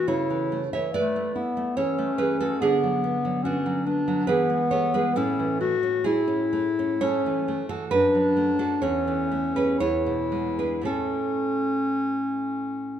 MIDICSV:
0, 0, Header, 1, 3, 480
1, 0, Start_track
1, 0, Key_signature, 3, "major"
1, 0, Tempo, 842697
1, 38, Time_signature, 3, 2, 24, 8
1, 2437, Tempo, 884956
1, 3397, Tempo, 975610
1, 3877, Tempo, 900901
1, 4837, Tempo, 983607
1, 5317, Tempo, 1050788
1, 5797, Tempo, 1125704
1, 6708, End_track
2, 0, Start_track
2, 0, Title_t, "Nylon-string guitar"
2, 0, Program_c, 0, 24
2, 43, Note_on_c, 0, 49, 60
2, 45, Note_on_c, 0, 73, 83
2, 48, Note_on_c, 0, 69, 60
2, 172, Note_on_c, 0, 52, 39
2, 296, Note_on_c, 0, 57, 45
2, 365, Note_off_c, 0, 52, 0
2, 391, Note_off_c, 0, 69, 0
2, 397, Note_off_c, 0, 73, 0
2, 414, Note_off_c, 0, 49, 0
2, 416, Note_on_c, 0, 52, 49
2, 416, Note_on_c, 0, 76, 80
2, 426, Note_on_c, 0, 73, 62
2, 486, Note_off_c, 0, 57, 0
2, 530, Note_off_c, 0, 73, 0
2, 533, Note_off_c, 0, 76, 0
2, 536, Note_on_c, 0, 74, 85
2, 542, Note_on_c, 0, 64, 55
2, 542, Note_on_c, 0, 71, 57
2, 605, Note_off_c, 0, 52, 0
2, 661, Note_on_c, 0, 57, 45
2, 725, Note_off_c, 0, 64, 0
2, 772, Note_on_c, 0, 64, 49
2, 843, Note_off_c, 0, 57, 0
2, 893, Note_on_c, 0, 57, 46
2, 958, Note_off_c, 0, 64, 0
2, 986, Note_off_c, 0, 71, 0
2, 987, Note_off_c, 0, 74, 0
2, 1007, Note_on_c, 0, 73, 82
2, 1009, Note_on_c, 0, 52, 47
2, 1014, Note_on_c, 0, 69, 62
2, 1078, Note_off_c, 0, 57, 0
2, 1130, Note_on_c, 0, 57, 49
2, 1197, Note_off_c, 0, 52, 0
2, 1229, Note_off_c, 0, 69, 0
2, 1234, Note_off_c, 0, 73, 0
2, 1243, Note_on_c, 0, 71, 82
2, 1246, Note_on_c, 0, 52, 51
2, 1249, Note_on_c, 0, 68, 59
2, 1318, Note_off_c, 0, 57, 0
2, 1357, Note_off_c, 0, 68, 0
2, 1362, Note_off_c, 0, 71, 0
2, 1370, Note_on_c, 0, 69, 79
2, 1372, Note_on_c, 0, 57, 43
2, 1378, Note_on_c, 0, 66, 56
2, 1436, Note_off_c, 0, 52, 0
2, 1482, Note_off_c, 0, 66, 0
2, 1486, Note_off_c, 0, 69, 0
2, 1487, Note_off_c, 0, 57, 0
2, 1490, Note_on_c, 0, 68, 92
2, 1495, Note_on_c, 0, 50, 61
2, 1499, Note_on_c, 0, 62, 69
2, 1615, Note_on_c, 0, 54, 41
2, 1730, Note_on_c, 0, 59, 52
2, 1795, Note_off_c, 0, 54, 0
2, 1850, Note_on_c, 0, 54, 50
2, 1912, Note_off_c, 0, 59, 0
2, 1938, Note_off_c, 0, 62, 0
2, 1939, Note_off_c, 0, 68, 0
2, 1965, Note_on_c, 0, 66, 74
2, 1971, Note_on_c, 0, 62, 51
2, 1972, Note_on_c, 0, 59, 52
2, 2032, Note_off_c, 0, 54, 0
2, 2084, Note_on_c, 0, 54, 49
2, 2153, Note_off_c, 0, 59, 0
2, 2201, Note_on_c, 0, 59, 46
2, 2272, Note_off_c, 0, 54, 0
2, 2322, Note_on_c, 0, 54, 52
2, 2393, Note_off_c, 0, 59, 0
2, 2422, Note_off_c, 0, 50, 0
2, 2424, Note_off_c, 0, 62, 0
2, 2425, Note_off_c, 0, 66, 0
2, 2433, Note_on_c, 0, 71, 84
2, 2440, Note_on_c, 0, 52, 72
2, 2441, Note_off_c, 0, 54, 0
2, 2443, Note_on_c, 0, 68, 71
2, 2555, Note_on_c, 0, 56, 50
2, 2660, Note_off_c, 0, 68, 0
2, 2662, Note_off_c, 0, 71, 0
2, 2670, Note_on_c, 0, 73, 82
2, 2674, Note_on_c, 0, 59, 50
2, 2678, Note_on_c, 0, 69, 64
2, 2746, Note_off_c, 0, 56, 0
2, 2787, Note_off_c, 0, 69, 0
2, 2792, Note_off_c, 0, 73, 0
2, 2796, Note_on_c, 0, 71, 79
2, 2799, Note_on_c, 0, 56, 57
2, 2803, Note_on_c, 0, 68, 60
2, 2867, Note_off_c, 0, 59, 0
2, 2902, Note_off_c, 0, 52, 0
2, 2911, Note_off_c, 0, 68, 0
2, 2912, Note_off_c, 0, 71, 0
2, 2915, Note_off_c, 0, 56, 0
2, 2915, Note_on_c, 0, 69, 88
2, 2917, Note_on_c, 0, 45, 74
2, 2921, Note_on_c, 0, 64, 68
2, 3042, Note_on_c, 0, 52, 44
2, 3157, Note_on_c, 0, 57, 53
2, 3232, Note_off_c, 0, 52, 0
2, 3279, Note_on_c, 0, 61, 55
2, 3350, Note_off_c, 0, 57, 0
2, 3379, Note_off_c, 0, 64, 0
2, 3379, Note_off_c, 0, 69, 0
2, 3394, Note_on_c, 0, 68, 80
2, 3400, Note_on_c, 0, 57, 54
2, 3402, Note_on_c, 0, 64, 68
2, 3467, Note_off_c, 0, 61, 0
2, 3509, Note_on_c, 0, 61, 53
2, 3586, Note_off_c, 0, 57, 0
2, 3633, Note_on_c, 0, 57, 54
2, 3707, Note_off_c, 0, 61, 0
2, 3762, Note_on_c, 0, 61, 53
2, 3830, Note_off_c, 0, 57, 0
2, 3857, Note_off_c, 0, 68, 0
2, 3860, Note_off_c, 0, 64, 0
2, 3870, Note_on_c, 0, 73, 91
2, 3872, Note_on_c, 0, 57, 58
2, 3874, Note_on_c, 0, 69, 72
2, 3956, Note_off_c, 0, 61, 0
2, 4002, Note_off_c, 0, 45, 0
2, 4004, Note_on_c, 0, 52, 52
2, 4072, Note_off_c, 0, 57, 0
2, 4121, Note_on_c, 0, 57, 46
2, 4193, Note_off_c, 0, 52, 0
2, 4215, Note_off_c, 0, 69, 0
2, 4220, Note_off_c, 0, 73, 0
2, 4233, Note_on_c, 0, 52, 52
2, 4233, Note_on_c, 0, 69, 86
2, 4238, Note_on_c, 0, 66, 56
2, 4308, Note_off_c, 0, 57, 0
2, 4346, Note_off_c, 0, 66, 0
2, 4348, Note_on_c, 0, 71, 98
2, 4352, Note_off_c, 0, 52, 0
2, 4352, Note_off_c, 0, 69, 0
2, 4352, Note_on_c, 0, 42, 69
2, 4354, Note_on_c, 0, 66, 73
2, 4475, Note_on_c, 0, 54, 43
2, 4592, Note_on_c, 0, 57, 50
2, 4665, Note_off_c, 0, 54, 0
2, 4690, Note_off_c, 0, 66, 0
2, 4695, Note_off_c, 0, 71, 0
2, 4712, Note_on_c, 0, 62, 54
2, 4712, Note_on_c, 0, 69, 67
2, 4717, Note_on_c, 0, 66, 48
2, 4788, Note_off_c, 0, 57, 0
2, 4823, Note_off_c, 0, 42, 0
2, 4830, Note_off_c, 0, 69, 0
2, 4832, Note_off_c, 0, 66, 0
2, 4832, Note_on_c, 0, 73, 87
2, 4836, Note_on_c, 0, 40, 62
2, 4838, Note_off_c, 0, 62, 0
2, 4839, Note_on_c, 0, 69, 64
2, 4959, Note_on_c, 0, 52, 47
2, 5076, Note_on_c, 0, 57, 49
2, 5149, Note_off_c, 0, 52, 0
2, 5177, Note_off_c, 0, 69, 0
2, 5179, Note_off_c, 0, 73, 0
2, 5195, Note_on_c, 0, 71, 77
2, 5199, Note_on_c, 0, 61, 52
2, 5204, Note_on_c, 0, 68, 52
2, 5269, Note_off_c, 0, 57, 0
2, 5303, Note_off_c, 0, 40, 0
2, 5312, Note_off_c, 0, 71, 0
2, 5313, Note_off_c, 0, 68, 0
2, 5314, Note_on_c, 0, 73, 96
2, 5319, Note_off_c, 0, 61, 0
2, 5319, Note_on_c, 0, 40, 65
2, 5322, Note_on_c, 0, 68, 62
2, 5433, Note_on_c, 0, 47, 44
2, 5549, Note_on_c, 0, 56, 46
2, 5624, Note_off_c, 0, 47, 0
2, 5656, Note_off_c, 0, 68, 0
2, 5657, Note_off_c, 0, 73, 0
2, 5673, Note_on_c, 0, 71, 64
2, 5675, Note_on_c, 0, 62, 47
2, 5678, Note_on_c, 0, 68, 46
2, 5746, Note_off_c, 0, 56, 0
2, 5776, Note_on_c, 0, 45, 52
2, 5784, Note_off_c, 0, 40, 0
2, 5784, Note_on_c, 0, 57, 43
2, 5789, Note_off_c, 0, 62, 0
2, 5791, Note_on_c, 0, 61, 44
2, 5792, Note_off_c, 0, 68, 0
2, 5792, Note_off_c, 0, 71, 0
2, 5794, Note_on_c, 0, 69, 73
2, 5801, Note_on_c, 0, 64, 59
2, 6708, Note_off_c, 0, 45, 0
2, 6708, Note_off_c, 0, 57, 0
2, 6708, Note_off_c, 0, 61, 0
2, 6708, Note_off_c, 0, 64, 0
2, 6708, Note_off_c, 0, 69, 0
2, 6708, End_track
3, 0, Start_track
3, 0, Title_t, "Clarinet"
3, 0, Program_c, 1, 71
3, 44, Note_on_c, 1, 64, 66
3, 383, Note_off_c, 1, 64, 0
3, 527, Note_on_c, 1, 57, 53
3, 749, Note_off_c, 1, 57, 0
3, 768, Note_on_c, 1, 59, 53
3, 1008, Note_on_c, 1, 61, 66
3, 1017, Note_off_c, 1, 59, 0
3, 1485, Note_on_c, 1, 59, 67
3, 1494, Note_off_c, 1, 61, 0
3, 1956, Note_on_c, 1, 61, 60
3, 1964, Note_off_c, 1, 59, 0
3, 2200, Note_on_c, 1, 62, 58
3, 2209, Note_off_c, 1, 61, 0
3, 2438, Note_on_c, 1, 59, 66
3, 2446, Note_off_c, 1, 62, 0
3, 2920, Note_on_c, 1, 61, 72
3, 2928, Note_off_c, 1, 59, 0
3, 3155, Note_off_c, 1, 61, 0
3, 3159, Note_on_c, 1, 66, 67
3, 3403, Note_on_c, 1, 64, 61
3, 3410, Note_off_c, 1, 66, 0
3, 3879, Note_on_c, 1, 61, 64
3, 3887, Note_off_c, 1, 64, 0
3, 4212, Note_off_c, 1, 61, 0
3, 4356, Note_on_c, 1, 62, 69
3, 4839, Note_on_c, 1, 61, 64
3, 4846, Note_off_c, 1, 62, 0
3, 5319, Note_on_c, 1, 64, 61
3, 5326, Note_off_c, 1, 61, 0
3, 5793, Note_off_c, 1, 64, 0
3, 5795, Note_on_c, 1, 61, 67
3, 6708, Note_off_c, 1, 61, 0
3, 6708, End_track
0, 0, End_of_file